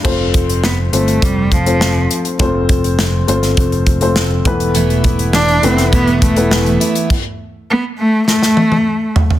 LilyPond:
<<
  \new Staff \with { instrumentName = "Upright piano" } { \time 4/4 \key f \lydian \tempo 4 = 102 <a c' f' c''>4~ <a c' f' c''>16 r16 <a c' f' c''>4~ <a c' f' c''>16 <a c' f' c''>4~ <a c' f' c''>16 | <a c' f' c''>4~ <a c' f' c''>16 r16 <a c' f' c''>4~ <a c' f' c''>16 <a c' f' c''>8. <a b e' b'>8~ | <a b e' b'>4~ <a b e' b'>16 r16 <a b e' b'>4~ <a b e' b'>16 <a b e' b'>4~ <a b e' b'>16 | r1 | }
  \new Staff \with { instrumentName = "Upright piano" } { \clef bass \time 4/4 \key f \lydian r1 | r2. r8 e8~ | e4 r2. | r1 | }
  \new Staff \with { instrumentName = "Cello" } { \time 4/4 \key f \lydian r4 b8 a8 g8 f4 r8 | r1 | r4 d'8 c'8 b8 a4 r8 | r4 b8 a8 a4. r8 | }
  \new Staff \with { instrumentName = "Steel-string acoustic guitar" } { \time 4/4 \key f \lydian r1 | r1 | <e, b, e a b e'>8 <e a b e'>8 <e a b e'>8 <e a b e'>8 <e, b, e a b e'>8 <e a b e'>8 <e a b e'>8 <e a b e'>8 | r1 | }
  \new Staff \with { instrumentName = "Picked electric bass" } { \clef bass \time 4/4 \key f \lydian f,,4. g,,8 r2 | f,,4. g,,8 f,,4. r8 | r4. f,,8 e,,4. r8 | r1 | }
  \new DrumStaff \with { instrumentName = "Drums" } \drummode { \time 4/4 <cymc bd>8 <hh bd>16 hh16 sn8 hh16 hh16 <hh bd>8 <hh bd>16 hh16 sn8 hh16 hh16 | <hh bd>8 <hh bd>16 hh16 sn8 hh16 <hh sn>16 <hh bd>16 hh16 <hh bd>16 hh16 sn8 <hh bd>16 hh16 | hh16 hh16 <hh bd>16 hh16 sn16 hh16 hh16 <hh sn>16 <hh bd>16 hh16 <hh bd>16 hh16 sn16 hh16 hh16 hh16 | <cymc bd>4 r4 sn16 sn16 tommh16 tommh16 r8 tomfh16 tomfh16 | }
>>